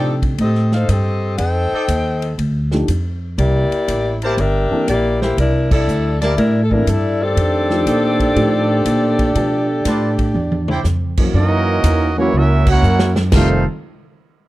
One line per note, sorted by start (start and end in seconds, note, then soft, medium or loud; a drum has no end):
0.00 0.37 C3 medium
0.00 0.36 F3 medium
0.00 0.36 A3 medium
0.00 0.20 C4 medium
0.00 0.36 D4 medium
0.00 0.12 D#4 medium
0.00 0.37 D#4 medium
0.00 0.20 G4 medium
0.00 0.37 G4 medium
0.00 0.12 A4 medium
0.00 0.20 A4 medium
0.00 0.12 D5 medium
0.00 0.20 D5 loud
0.00 0.12 G5 medium
0.22 kick medium
0.22 ride soft
0.38 0.87 A2 medium
0.38 0.71 C4 medium
0.38 0.72 G4 medium
0.38 0.72 A4 medium
0.38 0.72 D#5 medium
0.38 kick soft
0.38 ride medium
0.55 snare soft
0.72 0.89 D#4 medium
0.72 0.89 A4 medium
0.72 0.89 C5 medium
0.72 0.89 F5 medium
0.72 snare soft
0.88 1.37 G2 medium
0.88 1.39 C4 medium
0.88 1.40 G4 medium
0.88 1.37 A4 medium
0.88 1.39 D#5 medium
0.88 kick soft
0.88 hi-hat pedal medium
0.88 ride medium
1.38 1.70 F2 medium
1.38 2.34 D#4 medium
1.38 2.34 A4 medium
1.38 2.34 C5 medium
1.38 2.34 G5 loud
1.38 kick soft
1.38 ride medium
1.72 1.83 D#4 medium
1.72 1.83 A4 medium
1.72 1.83 D5 medium
1.72 1.83 G5 loud
1.72 muted upright bass stroke soft
1.88 2.37 D#2 medium
1.88 kick soft
1.88 hi-hat pedal medium
1.88 ride medium
2.22 ride soft
2.38 2.87 D2 medium
2.38 kick soft
2.38 ride medium
2.71 2.87 F3 medium
2.71 2.87 A3 medium
2.71 2.87 D4 medium
2.71 2.87 D#4 medium
2.71 2.88 G4 medium
2.71 snare soft
2.88 3.37 F2 medium
2.88 kick soft
2.88 hi-hat pedal medium
2.88 ride medium
3.38 3.69 C2 medium
3.38 4.18 A#3 medium
3.38 4.18 E4 medium
3.38 4.18 G4 medium
3.38 4.18 D5 medium
3.38 kick soft
3.38 ride medium
3.71 muted upright bass stroke soft
3.71 ride soft
3.88 4.36 A1 medium
3.88 kick soft
3.88 hi-hat pedal medium
3.88 ride medium
4.22 4.40 A#3 medium
4.22 4.33 E4 medium
4.22 4.39 E4 medium
4.22 4.38 G4 medium
4.22 4.33 A#4 medium
4.22 4.40 C5 medium
4.22 4.33 D5 medium
4.22 4.33 A5 loud
4.22 ride soft
4.37 4.69 G1 medium
4.37 4.89 D4 loud
4.37 4.89 G4 medium
4.37 4.89 A#4 medium
4.37 4.89 E5 medium
4.37 kick soft
4.37 ride medium
4.71 4.86 E3 medium
4.71 4.86 A#3 medium
4.71 4.86 C4 medium
4.71 4.87 D4 medium
4.71 4.87 A4 medium
4.71 muted upright bass stroke soft
4.88 5.36 A#1 medium
4.88 5.20 A#3 medium
4.88 5.21 E4 medium
4.88 5.20 G4 medium
4.88 5.20 D5 loud
4.88 kick soft
4.88 hi-hat pedal medium
4.88 ride medium
5.22 5.37 A#3 medium
5.22 5.37 E4 medium
5.22 5.37 G4 medium
5.22 5.37 C5 medium
5.22 snare medium
5.37 5.86 C2 loud
5.37 5.70 G3 medium
5.37 5.70 D4 medium
5.37 5.70 E4 medium
5.37 5.70 A#4 medium
5.37 kick soft
5.37 ride medium
5.71 6.18 G3 medium
5.71 6.18 D4 medium
5.71 6.18 E4 medium
5.71 6.18 A4 loud
5.71 kick medium
5.71 crash medium
5.88 6.36 D2 medium
5.88 hi-hat pedal medium
6.21 6.37 A#3 medium
6.21 6.33 E4 medium
6.21 6.36 E4 medium
6.21 6.37 G4 medium
6.21 6.33 A#4 medium
6.21 6.37 D5 medium
6.21 6.33 D5 medium
6.21 6.33 A5 loud
6.21 snare medium
6.21 ride soft
6.37 6.86 A2 medium
6.37 6.61 G3 medium
6.37 6.61 D4 medium
6.37 6.61 E4 medium
6.37 6.61 A#4 medium
6.37 kick soft
6.37 ride medium
6.64 6.71 A4 medium
6.71 6.86 E3 medium
6.71 6.87 G3 medium
6.71 6.86 A#3 medium
6.71 6.86 C4 medium
6.71 6.87 D4 medium
6.71 6.86 D4 soft
6.71 6.88 E4 medium
6.71 6.87 A4 medium
6.71 6.88 A#4 medium
6.71 kick soft
6.87 7.35 G2 medium
6.87 7.22 G3 medium
6.87 7.22 D4 medium
6.87 7.22 E4 medium
6.87 7.21 A4 medium
6.87 kick soft
6.87 hi-hat pedal medium
6.87 ride medium
7.22 9.37 D#3 medium
7.22 10.36 A3 medium
7.22 9.37 C4 medium
7.22 10.85 D4 medium
7.22 10.86 G4 medium
7.22 10.36 A4 medium
7.22 10.86 D5 loud
7.36 7.85 F2 medium
7.36 kick soft
7.36 ride medium
7.70 7.85 F3 medium
7.70 7.86 A3 medium
7.70 7.86 D4 medium
7.70 7.86 D#4 medium
7.70 7.86 G4 medium
7.70 snare soft
7.86 8.34 A#2 medium
7.86 8.09 D#4 medium
7.86 8.09 A4 medium
7.86 8.09 D5 medium
7.86 8.09 G5 medium
7.86 kick soft
7.86 hi-hat pedal medium
7.86 ride medium
8.20 kick soft
8.20 ride soft
8.36 8.84 A2 medium
8.36 8.66 F3 medium
8.36 8.66 A3 medium
8.36 8.67 D4 medium
8.36 8.66 D#4 medium
8.36 8.67 G4 medium
8.36 ride medium
8.85 9.34 A#2 medium
8.85 kick soft
8.85 hi-hat pedal medium
8.85 ride medium
9.19 kick medium
9.19 ride medium
9.35 9.84 B2 medium
9.35 9.65 F3 medium
9.35 9.66 A3 medium
9.35 9.66 B3 soft
9.35 9.66 D4 medium
9.35 9.66 A4 medium
9.35 kick soft
9.35 ride medium
9.85 10.33 A2 medium
9.85 10.08 F4 medium
9.85 10.08 B4 medium
9.85 10.08 D5 medium
9.85 10.08 A5 medium
9.85 kick soft
9.85 snare soft
9.85 hi-hat pedal medium
9.85 ride medium
10.18 kick medium
10.18 ride soft
10.34 10.83 E2 medium
10.34 high tom medium
10.52 high tom medium
10.68 10.80 E4 loud
10.68 10.80 C5 medium
10.68 10.80 D5 medium
10.68 10.80 G5 loud
10.68 mid tom medium
10.84 11.33 F2 medium
10.84 snare soft
10.84 hi-hat pedal medium
11.17 11.33 E3 medium
11.17 11.33 F#3 soft
11.17 11.33 A#3 medium
11.17 11.33 C#4 medium
11.17 11.34 F#4 medium
11.17 kick medium
11.17 crash medium
11.33 11.82 F#2 medium
11.33 12.13 E3 medium
11.33 12.13 A#3 medium
11.33 12.14 C#4 medium
11.33 12.13 D#4 medium
11.33 12.14 F#4 medium
11.33 12.14 A#4 medium
11.33 12.14 D#5 loud
11.33 kick soft
11.83 12.32 E2 medium
11.83 kick soft
11.83 hi-hat pedal medium
11.83 ride medium
12.17 12.32 E3 medium
12.17 12.34 E3 medium
12.17 12.32 F#3 medium
12.17 12.34 A#3 medium
12.17 12.32 A#3 medium
12.17 12.35 A#3 medium
12.17 12.32 C#4 medium
12.17 12.33 C#4 medium
12.17 12.35 E4 medium
12.17 12.32 F#4 medium
12.17 12.35 F#4 medium
12.17 12.34 C#5 loud
12.33 12.81 C#2 medium
12.33 12.67 A#3 medium
12.33 12.67 C#4 medium
12.33 12.69 C#4 medium
12.33 12.67 E4 medium
12.37 12.69 F#4 medium
12.37 12.69 A#4 medium
12.37 12.69 E5 loud
12.67 13.14 A#3 medium
12.67 13.13 C#4 medium
12.67 13.14 F#4 medium
12.67 13.15 C#5 medium
12.67 kick medium
12.67 crash medium
12.71 13.15 E4 medium
12.71 13.15 A#4 medium
12.71 13.15 F#5 loud
12.82 13.31 F#2 loud
12.82 hi-hat pedal medium
12.99 snare medium
13.16 snare loud
13.32 13.63 F1 loud
13.32 13.63 F2 loud
13.32 13.63 C3 medium
13.32 13.63 D#3 loud
13.32 13.63 D#3 medium
13.32 13.63 G3 medium
13.32 13.63 A3 loud
13.32 13.63 A3 medium
13.32 13.63 C4 medium
13.32 13.65 D#4 medium
13.32 13.63 F4 medium
13.32 13.65 A4 medium
13.32 13.65 C5 medium
13.32 13.65 F5 medium
13.32 kick loud
13.32 snare loud
13.32 crash medium